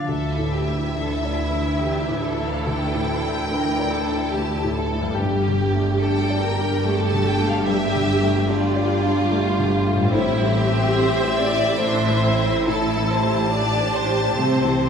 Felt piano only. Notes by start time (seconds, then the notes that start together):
Already playing: F3 D4 F4 D5
0.08 D2
0.38 A2
0.67 A3
0.96 D4
1.25 D5
1.53 D4
1.81 A3
2.09 A2
2.38 A3
2.66 D2
2.95 A2
3.22 A3
3.51 D4
3.79 D5
4.07 D4
4.36 A3
4.64 A2
4.92 A3
5.20 G2
5.48 D3
5.74 A3
6.02 D4
6.30 D5
6.58 D4
6.85 A3
7.14 D3
7.40 A3
7.67 G2
7.95 D3
8.22 A3
8.49 D4
8.76 D5
9.03 D4
9.31 A3
9.58 D3
9.86 A3
10.15 A2
10.41 E3
10.69 A3
10.97 G4
11.23 C5
11.51 G4
11.79 A3
12.09 E3
12.38 A3
12.67 A2
12.97 E3
13.24 A3
13.52 G4
13.80 C5
14.08 G4
14.36 A3
14.64 E3